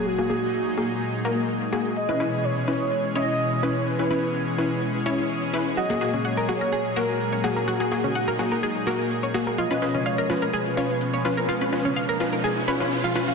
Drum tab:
HH |xxoxxxoxxxoxxxox|xxoxxxoxxxoxxxox|xxoxxxoxxxoxxxox|xxoxxxoxxxoxxxox|

HH |xxoxxxoxxxoxxxox|xxoxxxoxxxoxxxox|xxoxxxoxxxoxxxox|